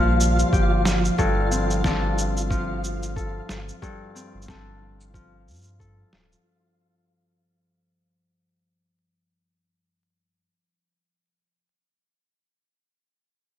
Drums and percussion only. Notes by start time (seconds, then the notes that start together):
0.20 cabasa
0.39 cabasa
0.53 kick, cabasa
0.85 snare, cabasa
1.05 cabasa
1.19 kick, cabasa
1.52 cabasa
1.71 cabasa
1.84 kick, snare, cabasa
2.18 cabasa
2.37 cabasa
2.51 kick, cabasa
2.84 cabasa
3.03 cabasa
3.17 kick, cabasa
3.49 snare, cabasa
3.69 cabasa
3.83 kick, cabasa
4.16 cabasa
4.42 cabasa
4.48 kick, snare
5.01 cabasa
5.14 kick, cabasa
5.48 cabasa
5.50 cabasa
5.53 cabasa
5.56 cabasa
5.58 cabasa
5.61 cabasa
5.64 cabasa
5.67 cabasa
5.80 kick, cabasa
6.13 snare
6.32 cabasa